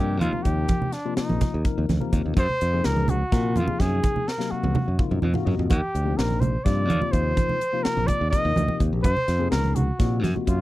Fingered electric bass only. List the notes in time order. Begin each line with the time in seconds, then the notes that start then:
Already playing: G2
0.22 D#2
0.45 D#2
1.17 muted fingered electric bass stroke
1.30 A#1
1.54 D#2
1.78 D#2
1.89 D2
2.13 D#2
2.26 D#2
2.37 F#2
2.62 F2
2.85 C#2
3.32 A#2
3.56 F#2
3.80 F#2
4.52 muted fingered electric bass stroke
4.64 C#2
4.88 F#2
5.11 F#2
5.23 F2
5.46 F#2
5.59 F2
5.71 D#2
5.95 D2
6.19 A#1
6.66 G2
6.90 D#2
7.13 D#2
7.86 muted fingered electric bass stroke
7.97 A#1
8.21 D#2
8.45 D#2
8.57 D2
8.80 D#2
8.93 A#1
9.04 F#2
9.28 F2
9.52 C#2
10.00 A#2
10.24 F#2
10.48 F#2